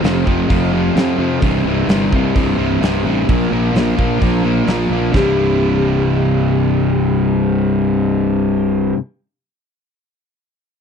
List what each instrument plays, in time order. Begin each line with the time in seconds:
0.03 fingered electric bass F1, distorted electric guitar F2 C3 F3, snare, open hi-hat
0.26 fingered electric bass F1, distorted electric guitar F2 C3 F3, kick
0.49 fingered electric bass F1, distorted electric guitar F2 C3 F3, kick, open hi-hat
0.72 distorted electric guitar F2 C3 F3
0.96 fingered electric bass F2, distorted electric guitar F2 C3 F3, snare, open hi-hat
1.18 fingered electric bass F2, distorted electric guitar F2 C3 F3
1.42 fingered electric bass C1, distorted electric guitar C2 G2 C3, kick, open hi-hat
1.65 fingered electric bass C1, distorted electric guitar C2 G2 C3
1.88 fingered electric bass G1, distorted electric guitar C2 G2 C3, snare, open hi-hat
2.12 distorted electric guitar C2 G2 C3, fingered electric bass C2, kick
2.34 fingered electric bass C1, distorted electric guitar C2 G2 C3, kick, open hi-hat
2.57 fingered electric bass C1, distorted electric guitar C2 G2 C3
2.81 fingered electric bass C1, distorted electric guitar C2 G2 C3, snare, open hi-hat
3.04 fingered electric bass A1, distorted electric guitar C2 G2 C3
3.28 fingered electric bass A#1, distorted electric guitar A#2 F3 A#3, kick, open hi-hat
3.49 fingered electric bass A#1, distorted electric guitar A#2 F3 A#3
3.72 fingered electric bass A#1, distorted electric guitar A#2 F3 A#3, open hi-hat
3.77 snare
3.96 fingered electric bass A#1, distorted electric guitar A#2 F3 A#3, kick
4.19 fingered electric bass A#1, distorted electric guitar A#2 F3 A#3, kick, open hi-hat
4.43 distorted electric guitar A#2 F3 A#3
4.65 fingered electric bass A#1, distorted electric guitar A#2 F3 A#3, snare, open hi-hat
4.69 distorted electric guitar A#2 F3
4.90 fingered electric bass A#1, distorted electric guitar A#2 F3 A#3
5.11 fingered electric bass C1, distorted electric guitar C2 G2 C3 G3 E4, kick
5.15 distorted electric guitar G2 C3, electric slide guitar G4, snare